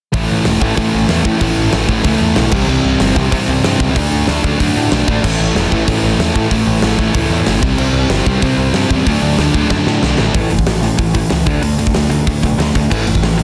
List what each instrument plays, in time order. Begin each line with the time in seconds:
0.12 picked electric bass A1, distorted electric guitar A2 E3 A3 C#4 E4, kick, open hi-hat
0.30 picked electric bass A1
0.43 picked electric bass E1, distorted electric guitar A2 E3 A3 C#4 E4, snare, open hi-hat
0.60 picked electric bass A1, distorted electric guitar A2 E3 A3 C#4 E4, kick
0.76 distorted electric guitar A2 E3 A3 C#4 E4, picked electric bass A2, kick, open hi-hat
0.94 picked electric bass A1
1.09 picked electric bass E2, distorted electric guitar A2 E3 A3 C#4 E4, snare, open hi-hat
1.25 picked electric bass A2, distorted electric guitar A2 E3 A3 C#4 E4, kick
1.41 picked electric bass A1, distorted electric guitar A2 E3 A3 C#4 E4, kick, open hi-hat
1.57 picked electric bass A1
1.73 picked electric bass A1, distorted electric guitar A2 E3 A3 C#4 E4, snare, open hi-hat
1.88 picked electric bass A1, distorted electric guitar A2 E3 A3 C#4 E4, kick
2.04 picked electric bass C#2, distorted electric guitar A2 E3 A3 C#4 E4, kick, open hi-hat
2.20 picked electric bass E2
2.36 picked electric bass B1, distorted electric guitar A2 E3 A3 C#4 E4, snare, open hi-hat
2.52 picked electric bass C2, distorted electric guitar C3 E3 G3 C4 E4, kick, crash
2.68 picked electric bass C2, distorted electric guitar C3 E3 G3 C4 E4
2.85 picked electric bass C2
2.99 picked electric bass G1, distorted electric guitar C3 E3 G3 C4 E4, snare, open hi-hat
3.16 picked electric bass C2, distorted electric guitar C3 E3 G3 C4 E4, kick
3.32 picked electric bass C3, distorted electric guitar C3 E3 G3 C4 E4, kick, open hi-hat
3.48 picked electric bass C2
3.63 picked electric bass G2, distorted electric guitar C3 E3 G3 C4 E4, snare, open hi-hat
3.80 picked electric bass C#2, distorted electric guitar C3 E3 G3 C4 E4, kick
3.95 picked electric bass D2, distorted electric guitar D3 A3 D4 F#4, kick, open hi-hat
4.12 picked electric bass D2
4.27 picked electric bass D2, distorted electric guitar D3 A3 D4 F#4, snare, open hi-hat
4.44 picked electric bass D2, distorted electric guitar D3 A3 D4 F#4, kick
4.60 picked electric bass F#2, distorted electric guitar D3 A3 D4 F#4, kick, open hi-hat
4.76 picked electric bass A2
4.92 picked electric bass B1, distorted electric guitar D3 A3 D4 F#4, snare, open hi-hat
5.08 picked electric bass A1, distorted electric guitar D3 A3 D4 F#4, kick
5.23 picked electric bass A1, distorted electric guitar A2 E3 A3 C#4 E4, kick, crash
5.39 picked electric bass A1
5.55 picked electric bass E1, distorted electric guitar A2 E3 A3 C#4 E4, snare, open hi-hat
5.71 picked electric bass A1, distorted electric guitar A2 E3 A3 C#4 E4, kick
5.87 distorted electric guitar A2 E3 A3 C#4 E4, picked electric bass A2, kick, open hi-hat
6.03 picked electric bass A1
6.18 picked electric bass E2, distorted electric guitar A2 E3 A3 C#4 E4, snare, open hi-hat
6.35 picked electric bass A2, distorted electric guitar A2 E3 A3 C#4 E4, kick
6.51 picked electric bass A1, distorted electric guitar A2 E3 A3 C#4 E4, kick, open hi-hat
6.67 picked electric bass A1
6.82 picked electric bass A1, distorted electric guitar A2 E3 A3 C#4 E4, snare, open hi-hat
6.98 picked electric bass A1, distorted electric guitar A2 E3 A3 C#4 E4, kick
7.14 picked electric bass C#2, distorted electric guitar A2 E3 A3 C#4 E4, kick, open hi-hat
7.30 picked electric bass E2
7.46 picked electric bass G1, distorted electric guitar A2 E3 A3 C#4 E4, snare, open hi-hat
7.62 picked electric bass C2, distorted electric guitar C3 G3 C4 E4, kick
7.77 picked electric bass C2, distorted electric guitar C3 G3 C4 E4, crash
7.93 picked electric bass C2
8.09 picked electric bass G1, distorted electric guitar C3 G3 C4 E4, snare, open hi-hat
8.26 picked electric bass C2, distorted electric guitar C3 G3 C4 E4, kick
8.42 picked electric bass C3, distorted electric guitar C3 G3 C4 E4, kick, open hi-hat
8.57 picked electric bass C2
8.73 picked electric bass G2, distorted electric guitar C3 G3 C4 E4, snare, open hi-hat
8.90 picked electric bass E2, distorted electric guitar C3 G3 C4 E4, kick
9.06 picked electric bass D2, distorted electric guitar D3 F#3 A3 D4, kick, open hi-hat
9.22 picked electric bass D2
9.38 picked electric bass D2, distorted electric guitar D3 F#3 A3 D4, snare, open hi-hat
9.54 picked electric bass D2, distorted electric guitar D3 F#3 A3 D4, kick
9.70 picked electric bass F#2, distorted electric guitar D3 F#3 A3 D4, kick, snare
9.87 picked electric bass A2, snare
10.03 picked electric bass B1, distorted electric guitar D3 F#3 A3 D4, snare
10.18 picked electric bass A1, distorted electric guitar D3 F#3 A3 D4, snare
10.34 picked electric bass A1, distorted electric guitar A2 E3 A3, kick, open hi-hat
10.50 picked electric bass F#1, distorted electric guitar A2 E3, open hi-hat
10.59 kick
10.67 picked electric bass A1, distorted electric guitar A2 E3, snare, open hi-hat
10.82 distorted electric guitar A2 E3, open hi-hat
10.97 picked electric bass A1, distorted electric guitar A2 E3, kick, open hi-hat
11.14 distorted electric guitar A2 E3, kick, open hi-hat
11.30 picked electric bass C#2, distorted electric guitar A2 E3, snare, open hi-hat
11.46 picked electric bass D2, distorted electric guitar D3 A3 D4, kick, open hi-hat
11.62 picked electric bass D2, distorted electric guitar D3 A3, open hi-hat
11.78 picked electric bass D2, distorted electric guitar D3 A3, open hi-hat
11.87 kick
11.94 picked electric bass D2, distorted electric guitar D3 A3, snare, open hi-hat
12.10 picked electric bass D2, distorted electric guitar D3 A3, open hi-hat
12.27 picked electric bass D2, distorted electric guitar D3 A3, kick, open hi-hat
12.43 picked electric bass B1, distorted electric guitar D3 A3, kick, open hi-hat
12.58 picked electric bass D2, distorted electric guitar D3 A3, snare, open hi-hat
12.75 picked electric bass D2, distorted electric guitar D3 A3, kick, open hi-hat
12.90 picked electric bass A1, distorted electric guitar A2 E3 A3, kick, crash
13.06 picked electric bass F#1, distorted electric guitar A2 E3, open hi-hat
13.15 kick
13.22 picked electric bass A1, distorted electric guitar A2 E3, snare, open hi-hat
13.38 distorted electric guitar A2 E3, open hi-hat